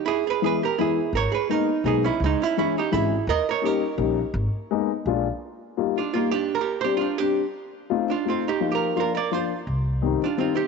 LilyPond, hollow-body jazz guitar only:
\new Staff \with { instrumentName = "Hollow-body jazz guitar" } { \time 3/4 \key gis \minor \tempo 4 = 169 <e' gis'>8 <gis' b'>8 <gis' b'>8 <g' ais'>8 <e' gis'>4 | <ais' cis''>8 <gis' b'>8 <dis' ais'>4 <dis' gis'>8 <cis' e'>8 | <gis dis'>8 <cis' e'>8 <cis' e'>8 <dis' g'>8 <e' gis'>4 | <ais' dis''>8 <ais' cis''>8 <g' ais'>2~ |
<g' ais'>2 r4 | \key ees \major r4. <d' f'>8 <bes f'>8 <d' g'>8~ | <d' g'>16 <g' bes'>8. <g' c''>8 <d' f'>8 <d' g'>8. r16 | r4. <d' f'>8 <c' f'>8 <ees' g'>8~ |
<ees' g'>16 <g' bes'>8. <f' bes'>8 <bes' d''>8 <f' c''>8. r16 | r4. <d' f'>8 <c' f'>8 <c' g'>8 | }